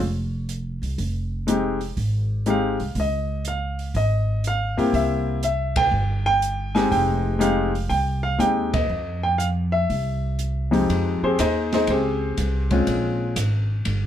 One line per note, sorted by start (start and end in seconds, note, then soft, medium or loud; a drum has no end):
0.00 0.78 F1 medium
0.00 0.45 C#5 medium
0.49 closed hi-hat soft
0.82 0.96 C2 medium
0.82 open hi-hat soft
0.98 1.93 F1 medium
0.98 kick soft
0.98 open hi-hat soft
1.47 1.77 G#3 medium
1.47 1.78 C4 medium
1.47 1.78 D#4 medium
1.47 1.78 G4 medium
1.47 closed hi-hat medium
1.81 open hi-hat soft
1.97 2.76 G#1 medium
1.97 kick soft
1.97 open hi-hat soft
2.46 2.76 G#3 medium
2.46 2.76 C4 medium
2.46 2.77 D#4 medium
2.46 2.77 G4 medium
2.46 closed hi-hat soft
2.50 2.99 F5 medium
2.80 2.95 C2 medium
2.80 open hi-hat soft
2.95 3.91 C#2 medium
2.95 kick soft
2.95 open hi-hat soft
3.00 3.44 D#5 medium
3.45 3.97 F5 medium
3.45 closed hi-hat medium
3.79 open hi-hat soft
3.94 4.74 G#1 medium
3.94 4.42 D#5 medium
3.94 kick soft
3.94 open hi-hat soft
4.44 4.97 F5 medium
4.44 closed hi-hat soft
4.77 4.92 G2 medium
4.77 5.40 A#3 medium
4.77 5.40 C4 medium
4.77 5.40 E4 medium
4.77 5.40 G4 medium
4.77 open hi-hat soft
4.93 5.88 C2 medium
4.93 5.40 E5 medium
4.93 kick soft
4.93 open hi-hat soft
5.43 5.75 E5 medium
5.43 closed hi-hat medium
5.76 6.25 G5 loud
5.76 kick medium
5.76 ride medium
5.91 6.87 G1 medium
6.26 6.77 G5 loud
6.42 closed hi-hat soft
6.75 7.37 G#3 medium
6.75 7.38 C4 medium
6.75 7.38 D#4 medium
6.75 7.38 G4 medium
6.75 6.90 G#5 medium
6.75 snare soft
6.75 open hi-hat soft
6.92 7.87 F1 medium
6.92 7.43 G5 medium
6.92 kick soft
6.92 open hi-hat soft
7.39 7.70 G#3 medium
7.39 7.71 C4 medium
7.39 7.71 D#4 medium
7.39 7.71 G4 medium
7.39 7.87 F5 medium
7.39 closed hi-hat medium
7.75 open hi-hat soft
7.89 8.37 C2 medium
7.89 8.25 G5 medium
7.89 kick soft
7.89 open hi-hat soft
8.23 8.39 F5 medium
8.38 8.86 D#2 medium
8.38 8.70 G#3 medium
8.38 8.70 C4 soft
8.38 8.70 D#4 medium
8.38 8.70 G4 medium
8.38 8.75 G5 medium
8.38 closed hi-hat soft
8.74 9.20 D#5 medium
8.74 kick medium
8.74 ride medium
8.89 9.85 F2 medium
9.23 9.38 G5 medium
9.38 9.46 F5 medium
9.38 closed hi-hat medium
9.72 10.68 E5 medium
9.90 10.84 C2 medium
9.90 kick soft
9.90 open hi-hat soft
10.39 closed hi-hat soft
10.71 11.34 F2 medium
10.71 11.34 G#3 medium
10.71 11.22 C4 medium
10.71 11.34 D#4 medium
10.71 11.22 G4 medium
10.71 open hi-hat soft
10.89 11.20 F2 medium
10.89 kick soft
10.89 ride medium
11.22 11.38 C4 medium
11.22 11.38 G4 medium
11.22 11.38 G#4 medium
11.22 11.38 C5 medium
11.22 muted upright bass stroke soft
11.39 11.86 D#2 medium
11.39 11.71 D#4 medium
11.39 11.71 G#4 medium
11.39 11.72 C5 medium
11.39 11.71 D#5 medium
11.39 kick soft
11.39 hi-hat pedal medium
11.39 ride medium
11.72 11.89 D#4 medium
11.72 11.88 G#4 medium
11.72 11.88 C5 medium
11.72 11.88 D#5 medium
11.72 snare medium
11.72 ride soft
11.87 12.35 C#2 medium
11.87 12.68 C4 medium
11.87 12.68 G4 medium
11.87 12.68 G#4 medium
11.87 12.68 C5 medium
11.87 kick soft
11.87 ride medium
12.37 12.85 C2 medium
12.37 kick soft
12.37 hi-hat pedal soft
12.37 ride medium
12.71 13.33 G#3 medium
12.71 13.33 C4 medium
12.71 13.33 C#4 medium
12.71 13.34 F4 medium
12.71 kick medium
12.71 ride soft
12.87 13.35 A#1 medium
12.87 kick soft
12.87 ride medium
13.36 13.84 G#1 medium
13.36 kick soft
13.36 hi-hat pedal medium
13.36 ride medium
13.85 14.06 G1 medium
13.85 kick soft
13.85 ride medium